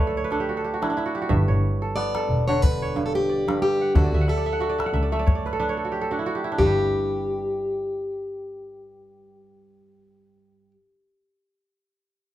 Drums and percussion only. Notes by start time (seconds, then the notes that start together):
0.31 calabash click
0.83 calabash click
0.99 calabash click
1.30 calabash thump
1.97 calabash click
2.15 calabash click
2.63 calabash thump
2.97 calabash click
3.49 calabash click
3.63 calabash click
3.96 calabash thump, calabash click
4.28 calabash click
4.62 calabash click
4.80 calabash click
4.95 calabash click
5.13 calabash click
5.28 calabash thump
5.47 calabash click
6.59 calabash thump